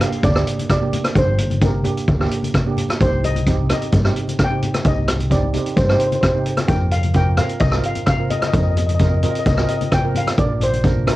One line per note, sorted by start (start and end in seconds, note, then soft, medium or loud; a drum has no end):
0.00 0.22 A#3 medium
0.00 0.22 D4 medium
0.00 0.22 G4 medium
0.00 0.07 F5 medium
0.00 cross-stick medium
0.00 closed hi-hat medium
0.00 low conga medium
0.08 0.16 F5 medium
0.08 closed hi-hat medium
0.23 0.41 D2 medium
0.23 0.67 D5 medium
0.23 kick loud
0.23 closed hi-hat medium
0.34 0.63 A#3 medium
0.34 0.63 D4 medium
0.34 0.63 G4 medium
0.34 cross-stick medium
0.47 closed hi-hat medium
0.59 closed hi-hat medium
0.59 high conga medium
0.69 1.17 D5 medium
0.69 kick medium
0.69 cross-stick medium
0.69 closed hi-hat medium
0.82 1.03 A#3 medium
0.82 1.03 D4 medium
0.82 1.03 G4 medium
0.93 closed hi-hat medium
0.93 low conga medium
1.04 cross-stick medium
1.04 closed hi-hat medium
1.04 high conga medium
1.15 1.86 G1 medium
1.15 1.44 A#3 medium
1.15 1.44 D4 medium
1.15 1.44 G4 medium
1.15 1.60 C5 medium
1.15 kick loud
1.15 closed hi-hat medium
1.38 closed hi-hat medium
1.38 low conga medium
1.50 closed hi-hat soft
1.50 high conga medium
1.61 1.76 A#3 medium
1.61 1.76 D4 medium
1.61 1.77 G4 medium
1.61 2.75 A#4 medium
1.61 kick medium
1.61 closed hi-hat medium
1.84 2.05 A#3 medium
1.84 2.06 D4 medium
1.84 2.06 G4 medium
1.84 closed hi-hat medium
1.84 low conga medium
1.97 closed hi-hat medium
2.08 2.26 D2 medium
2.08 kick loud
2.08 closed hi-hat medium
2.19 2.47 A#3 medium
2.19 2.48 D4 medium
2.19 2.48 G4 medium
2.19 cross-stick medium
2.31 closed hi-hat medium
2.43 closed hi-hat medium
2.43 high conga medium
2.54 kick medium
2.54 cross-stick medium
2.54 closed hi-hat soft
2.66 2.87 A#3 medium
2.66 2.87 D4 medium
2.66 2.88 G4 medium
2.77 closed hi-hat medium
2.77 low conga medium
2.89 cross-stick medium
2.89 closed hi-hat soft
2.89 high conga medium
3.00 3.71 C2 medium
3.00 3.28 C4 medium
3.00 3.29 D#4 medium
3.00 3.29 G4 medium
3.00 3.23 C5 medium
3.00 kick loud
3.00 closed hi-hat medium
3.24 3.67 D#5 medium
3.24 closed hi-hat medium
3.24 low conga medium
3.36 closed hi-hat medium
3.36 high conga medium
3.47 3.61 C4 medium
3.47 3.61 D#4 medium
3.47 3.62 G4 medium
3.47 kick medium
3.47 closed hi-hat medium
3.69 3.91 C4 medium
3.69 3.91 D#4 medium
3.69 3.91 G4 medium
3.69 4.14 D#5 medium
3.69 cross-stick medium
3.69 closed hi-hat medium
3.69 low conga medium
3.82 closed hi-hat medium
3.92 4.10 G2 medium
3.92 kick loud
3.92 closed hi-hat medium
4.04 4.32 C4 medium
4.04 4.32 D#4 medium
4.04 4.33 G4 medium
4.04 cross-stick medium
4.16 closed hi-hat medium
4.28 closed hi-hat medium
4.28 high conga medium
4.39 kick medium
4.39 cross-stick medium
4.39 closed hi-hat medium
4.44 4.89 G5 medium
4.50 4.71 C4 medium
4.50 4.72 D#4 soft
4.50 4.72 G4 medium
4.62 closed hi-hat medium
4.62 low conga medium
4.74 cross-stick medium
4.74 closed hi-hat medium
4.74 high conga medium
4.84 5.55 C2 medium
4.84 5.12 C4 medium
4.84 5.13 D#4 medium
4.84 5.13 G4 medium
4.84 5.29 D#5 medium
4.84 kick loud
4.84 closed hi-hat medium
5.08 cross-stick medium
5.08 closed hi-hat medium
5.08 low conga medium
5.20 closed hi-hat soft
5.20 high conga medium
5.30 5.45 C4 medium
5.30 5.45 D#4 medium
5.30 5.45 G4 medium
5.30 5.74 D5 medium
5.30 kick medium
5.30 closed hi-hat medium
5.30 low conga medium
5.43 high conga medium
5.53 5.75 C4 medium
5.53 5.75 D#4 medium
5.53 5.75 G4 medium
5.53 closed hi-hat medium
5.53 low conga medium
5.66 closed hi-hat soft
5.76 5.94 G2 medium
5.76 5.84 C5 medium
5.76 kick medium
5.76 closed hi-hat soft
5.85 6.16 C4 medium
5.85 5.92 C5 soft
5.89 6.17 D#4 medium
5.89 6.17 G4 medium
5.89 5.98 C5 medium
5.89 cross-stick medium
5.99 6.06 C5 medium
5.99 closed hi-hat medium
6.07 6.15 C5 medium
6.12 6.20 C5 soft
6.12 closed hi-hat soft
6.12 high conga medium
6.21 6.27 C5 medium
6.21 kick medium
6.21 cross-stick medium
6.21 closed hi-hat medium
6.28 6.36 C5 soft
6.35 6.56 C4 medium
6.35 6.56 D#4 medium
6.35 6.56 G4 medium
6.46 closed hi-hat medium
6.57 cross-stick medium
6.57 closed hi-hat soft
6.57 high conga medium
6.68 7.39 F2 medium
6.68 6.96 C4 medium
6.68 6.97 F4 soft
6.68 6.97 A#4 medium
6.68 6.93 G5 medium
6.68 kick loud
6.68 closed hi-hat medium
6.91 7.16 F5 medium
6.91 closed hi-hat medium
7.03 closed hi-hat medium
7.03 high conga medium
7.14 7.29 C4 medium
7.14 7.29 F4 medium
7.14 7.30 A#4 medium
7.14 7.40 G5 medium
7.14 kick medium
7.14 closed hi-hat medium
7.37 7.59 C4 medium
7.37 7.59 F4 medium
7.37 7.59 A#4 medium
7.37 7.60 F5 medium
7.37 cross-stick medium
7.37 closed hi-hat medium
7.37 low conga medium
7.49 closed hi-hat soft
7.60 7.79 C2 medium
7.60 7.85 D#5 medium
7.60 kick loud
7.60 closed hi-hat medium
7.72 8.01 C4 medium
7.72 8.01 F4 medium
7.72 8.01 A#4 medium
7.72 cross-stick medium
7.84 8.07 F5 medium
7.84 closed hi-hat medium
7.95 closed hi-hat medium
7.95 high conga medium
8.06 8.32 F5 medium
8.06 kick medium
8.06 cross-stick medium
8.06 closed hi-hat medium
8.19 8.40 C4 medium
8.19 8.40 F4 medium
8.19 8.41 A#4 medium
8.30 8.38 D#5 medium
8.30 closed hi-hat medium
8.30 low conga medium
8.40 8.47 D#5 medium
8.40 cross-stick medium
8.40 closed hi-hat medium
8.40 high conga medium
8.48 8.54 D#5 medium
8.53 9.24 F2 medium
8.53 8.81 C4 medium
8.53 8.82 F4 medium
8.53 8.82 A#4 medium
8.53 8.62 D#5 medium
8.53 kick loud
8.53 closed hi-hat medium
8.63 8.70 D#5 medium
8.71 8.76 D#5 medium
8.76 8.85 D#5 medium
8.76 closed hi-hat medium
8.76 low conga medium
8.87 8.93 D#5 medium
8.87 closed hi-hat medium
8.87 high conga medium
8.95 9.00 D#5 medium
8.99 9.14 C4 medium
8.99 9.14 F4 medium
8.99 9.14 A#4 medium
8.99 9.08 D#5 medium
8.99 kick medium
8.99 closed hi-hat medium
9.09 9.16 D#5 soft
9.17 9.22 D#5 soft
9.23 9.44 C4 medium
9.23 9.44 F4 medium
9.23 9.44 A#4 medium
9.23 9.30 D#5 medium
9.23 closed hi-hat medium
9.23 low conga medium
9.31 9.38 D#5 soft
9.31 closed hi-hat medium
9.39 9.45 D#5 medium
9.45 9.64 C2 medium
9.45 9.53 D#5 medium
9.45 kick loud
9.45 closed hi-hat medium
9.54 9.61 D#5 medium
9.54 cross-stick medium
9.59 9.86 C4 medium
9.59 9.86 F4 medium
9.59 9.86 A#4 medium
9.63 9.68 D#5 medium
9.68 9.76 D#5 medium
9.68 closed hi-hat medium
9.77 9.84 D#5 medium
9.77 closed hi-hat medium
9.77 high conga medium
9.92 10.17 G5 medium
9.92 kick medium
9.92 cross-stick medium
9.92 closed hi-hat medium
10.04 10.25 C4 medium
10.04 10.25 F4 medium
10.04 10.25 A#4 medium
10.15 10.40 F5 medium
10.15 closed hi-hat medium
10.15 low conga medium
10.27 cross-stick medium
10.27 closed hi-hat medium
10.27 high conga medium
10.38 11.08 A#1 medium
10.38 10.66 D4 medium
10.38 10.66 F4 medium
10.38 10.66 A#4 medium
10.38 10.60 D5 medium
10.38 kick loud
10.38 closed hi-hat medium
10.61 11.05 C5 medium
10.61 closed hi-hat medium
10.61 low conga medium
10.73 closed hi-hat soft
10.73 high conga medium
10.84 10.98 D4 medium
10.84 10.98 F4 medium
10.84 10.99 A#4 medium
10.84 kick medium
10.84 closed hi-hat medium
11.07 11.16 D4 medium
11.07 11.16 F4 medium
11.07 11.16 A#4 medium
11.07 11.15 A#4 medium
11.07 cross-stick medium
11.07 closed hi-hat medium
11.07 low conga medium